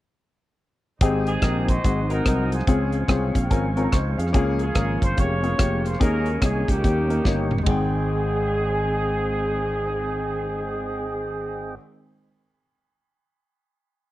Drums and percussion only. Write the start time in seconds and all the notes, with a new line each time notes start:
1.01 kick, closed hi-hat
1.27 closed hi-hat
1.42 kick, cross-stick, closed hi-hat
1.68 kick, closed hi-hat
1.84 kick, closed hi-hat
2.10 closed hi-hat
2.26 kick, cross-stick, closed hi-hat
2.52 closed hi-hat
2.60 cross-stick
2.67 kick, closed hi-hat
2.92 closed hi-hat
3.08 kick, cross-stick, closed hi-hat
3.35 kick, closed hi-hat
3.51 kick, closed hi-hat
3.77 closed hi-hat
3.92 kick, cross-stick, closed hi-hat
4.19 closed hi-hat
4.27 cross-stick
4.34 kick, closed hi-hat
4.59 closed hi-hat
4.75 kick, cross-stick, closed hi-hat
5.02 kick, closed hi-hat
5.17 kick, closed hi-hat
5.44 closed hi-hat
5.59 kick, cross-stick, closed hi-hat
5.85 cross-stick, closed hi-hat
5.94 cross-stick
6.01 kick, closed hi-hat
6.26 closed hi-hat
6.42 kick, cross-stick, closed hi-hat
6.68 kick, closed hi-hat
6.84 kick, closed hi-hat
7.10 closed hi-hat
7.25 kick, snare
7.51 mid tom
7.58 floor tom
7.66 kick, ride bell